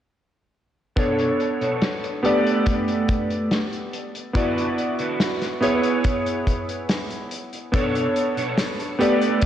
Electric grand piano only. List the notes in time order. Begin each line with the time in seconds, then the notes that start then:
0.96 B3 D4 A4 C#5
2.23 B3 G4 A4 D5
4.33 B3 E4 F#4 D5
5.61 B3 E4 G#4 C#5
7.72 B3 D4 A4 C#5
8.99 B3 G4 A4 D5